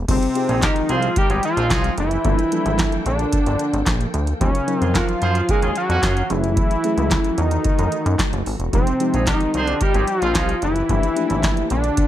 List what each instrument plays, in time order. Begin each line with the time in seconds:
0.08 analog synth bass F1, string machine F3 G#3 D#4 G5, fm electric piano G3 C4 D#4 F4 G#4, analog synth lead C4, kick, closed hi-hat, crash
0.23 closed hi-hat
0.35 fm electric piano C4 D#4 F4 G4 G#4, closed hi-hat
0.49 analog synth bass A#1, horn section C4 D#4 G#4, closed hi-hat
0.62 horn section D#4 G4 A#4, analog synth lead D#4, kick, snare, clap, closed hi-hat
0.76 closed hi-hat
0.89 analog synth bass C2, horn section C4 G#4 C5, analog synth lead F4, closed hi-hat
1.02 closed hi-hat
1.16 horn section D#4 G4 A#4, analog synth lead G4, kick, closed hi-hat
1.30 analog synth bass G#1, horn section C4 D#4 G#4, closed hi-hat
1.43 analog synth lead F4, closed hi-hat
1.56 analog synth bass A#1, horn section G#3 C4 F4, closed hi-hat
1.70 analog synth bass C2, horn section C4 D#4 G#4, kick, snare, clap, closed hi-hat
1.84 closed hi-hat
1.98 analog synth bass F#1, analog synth lead E4, closed hi-hat
2.11 closed hi-hat
2.25 analog synth bass G1, fm electric piano G3 A#3 D4 F4 A4, string machine A#3 A4, kick, closed hi-hat
2.39 closed hi-hat
2.52 fm electric piano F3 G3 A#3 D4 A4, closed hi-hat
2.66 analog synth bass G#1, closed hi-hat
2.79 kick, snare, clap, closed hi-hat
2.92 closed hi-hat
3.06 analog synth bass A#1, analog synth lead D4, closed hi-hat
3.19 closed hi-hat
3.33 kick, closed hi-hat
3.46 analog synth bass G1, closed hi-hat
3.59 closed hi-hat
3.73 analog synth bass G#1, closed hi-hat
3.86 analog synth bass A#1, kick, snare, clap, closed hi-hat
4.01 closed hi-hat
4.14 analog synth bass D2, closed hi-hat
4.27 closed hi-hat
4.40 analog synth bass D#2, string machine D#3 F#3 C#4 F5, fm electric piano F#3 C#4 D#4 F4 A#4, analog synth lead C#4, kick, closed hi-hat
4.55 closed hi-hat
4.67 fm electric piano F#3 C#4 D#4 F4 A#4, closed hi-hat
4.78 analog synth bass F2, analog synth lead C4, horn section C#4 F4, closed hi-hat
4.82 horn section G#4
4.95 horn section A#3 F#4 A#4, analog synth lead F4, kick, snare, clap, closed hi-hat
5.09 closed hi-hat
5.22 analog synth bass F#2, horn section F4 G#4 C5, closed hi-hat
5.35 closed hi-hat
5.49 horn section A#3 F#4 A#4, analog synth lead G#4, kick, closed hi-hat
5.62 analog synth bass D#2, horn section C#4 F4 G#4, closed hi-hat
5.76 analog synth lead F#4, closed hi-hat
5.89 analog synth bass F2, horn section A#3 C#4 F#4, closed hi-hat
6.03 analog synth bass F#2, horn section C#4 F4 G#4, kick, snare, clap, closed hi-hat
6.17 closed hi-hat
6.24 analog synth lead F#4
6.30 analog synth bass F#1, string machine E3 A3 F#4, fm electric piano F#3 A3 C#4 E4 G#4, analog synth lead E4, closed hi-hat
6.44 closed hi-hat
6.57 kick, closed hi-hat
6.71 closed hi-hat
6.84 fm electric piano F#3 A3 C#4 E4 G#4, closed hi-hat
6.97 analog synth bass C#2, closed hi-hat
7.11 kick, snare, clap, closed hi-hat
7.25 closed hi-hat
7.38 analog synth bass E2, analog synth lead D#4, closed hi-hat
7.51 closed hi-hat
7.64 kick, closed hi-hat
7.79 analog synth bass F#2, closed hi-hat
7.92 closed hi-hat
8.06 analog synth bass F#2, closed hi-hat
8.19 kick, snare, clap, closed hi-hat
8.33 analog synth bass F#1, closed hi-hat
8.46 analog synth bass G#1, open hi-hat
8.59 analog synth bass E1, closed hi-hat
8.73 analog synth bass F1, fm electric piano F3 G#3 C4 D#4 G4, string machine F3 D#4 G4, analog synth lead C4, kick, closed hi-hat
8.87 closed hi-hat
9.00 fm electric piano F3 G#3 C4 D#4 G4, closed hi-hat
9.14 analog synth bass A#1, horn section C4 D#4 G#4, closed hi-hat
9.27 analog synth lead D#4, horn section D#4 G4 A#4, kick, snare, clap, closed hi-hat
9.40 closed hi-hat
9.54 analog synth bass C2, horn section C4 G#4 C5, closed hi-hat
9.65 analog synth lead D4, closed hi-hat
9.81 horn section D#4 G4 A#4, analog synth lead G4, kick, closed hi-hat
9.94 analog synth bass G#1, horn section C4 D#4 G#4, closed hi-hat
10.07 analog synth lead F4, closed hi-hat
10.22 analog synth bass A#1, horn section G#3 C4 F4, closed hi-hat
10.35 analog synth bass C2, horn section C4 D#4 G#4, kick, snare, clap, closed hi-hat
10.49 closed hi-hat
10.62 analog synth bass F#1, analog synth lead E4, closed hi-hat
10.76 closed hi-hat
10.89 analog synth bass G1, string machine A#2 A4, fm electric piano F3 A3 A#3 D4 G4, kick, closed hi-hat
11.03 closed hi-hat
11.16 fm electric piano F3 A3 A#3 D4 G4, closed hi-hat
11.30 analog synth bass G#1, closed hi-hat
11.43 kick, snare, clap, closed hi-hat
11.57 closed hi-hat
11.70 analog synth bass A#1, analog synth lead D4, closed hi-hat
11.84 closed hi-hat
11.97 kick, closed hi-hat